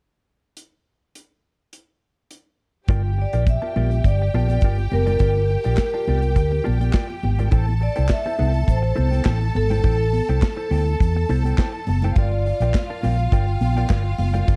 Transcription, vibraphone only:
0, 0, Header, 1, 2, 480
1, 0, Start_track
1, 0, Tempo, 579151
1, 478, Time_signature, 4, 2, 24, 8
1, 12068, End_track
2, 0, Start_track
2, 0, Title_t, "Vibraphone"
2, 0, Program_c, 0, 11
2, 2665, Note_on_c, 0, 74, 81
2, 2766, Note_off_c, 0, 74, 0
2, 2894, Note_on_c, 0, 76, 81
2, 3332, Note_off_c, 0, 76, 0
2, 3361, Note_on_c, 0, 74, 71
2, 3805, Note_off_c, 0, 74, 0
2, 4088, Note_on_c, 0, 70, 94
2, 5488, Note_off_c, 0, 70, 0
2, 6489, Note_on_c, 0, 74, 81
2, 6729, Note_off_c, 0, 74, 0
2, 6729, Note_on_c, 0, 76, 97
2, 7206, Note_on_c, 0, 72, 64
2, 7216, Note_off_c, 0, 76, 0
2, 7647, Note_off_c, 0, 72, 0
2, 7927, Note_on_c, 0, 69, 104
2, 9328, Note_off_c, 0, 69, 0
2, 10091, Note_on_c, 0, 74, 83
2, 10557, Note_on_c, 0, 77, 83
2, 10577, Note_off_c, 0, 74, 0
2, 11042, Note_on_c, 0, 79, 78
2, 11051, Note_off_c, 0, 77, 0
2, 11757, Note_on_c, 0, 77, 93
2, 11781, Note_off_c, 0, 79, 0
2, 12068, Note_off_c, 0, 77, 0
2, 12068, End_track
0, 0, End_of_file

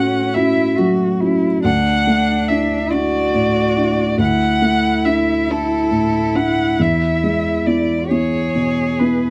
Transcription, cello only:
0, 0, Header, 1, 2, 480
1, 0, Start_track
1, 0, Tempo, 855920
1, 919, Time_signature, 6, 3, 24, 8
1, 3319, Tempo, 877193
1, 5169, End_track
2, 0, Start_track
2, 0, Title_t, "Cello"
2, 0, Program_c, 0, 42
2, 0, Note_on_c, 0, 61, 78
2, 199, Note_on_c, 0, 64, 76
2, 207, Note_off_c, 0, 61, 0
2, 438, Note_on_c, 0, 66, 61
2, 446, Note_off_c, 0, 64, 0
2, 675, Note_on_c, 0, 64, 66
2, 683, Note_off_c, 0, 66, 0
2, 917, Note_off_c, 0, 64, 0
2, 921, Note_on_c, 0, 62, 73
2, 1636, Note_on_c, 0, 66, 85
2, 1644, Note_off_c, 0, 62, 0
2, 2354, Note_on_c, 0, 64, 63
2, 2362, Note_off_c, 0, 66, 0
2, 4513, Note_on_c, 0, 68, 64
2, 4521, Note_off_c, 0, 64, 0
2, 5169, Note_off_c, 0, 68, 0
2, 5169, End_track
0, 0, End_of_file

